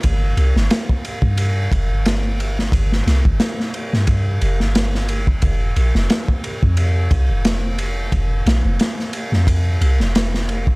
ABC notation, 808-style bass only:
X:1
M:4/4
L:1/16
Q:"Swing 16ths" 1/4=89
K:Cphr
V:1 name="808-style bass" clef=bass
G,,,2 C,, G,,, z3 G,,3 F,,, G,,,4- G,,, | G,,,2 C,, G,,, z3 G,,3 F,,, G,,,4- G,,, | F,,,2 B,,, F,,, z3 F,,3 C,, F,,,4- F,,, | F,,,2 B,,, F,,, z3 F,,3 C,, F,,,4- F,,, |]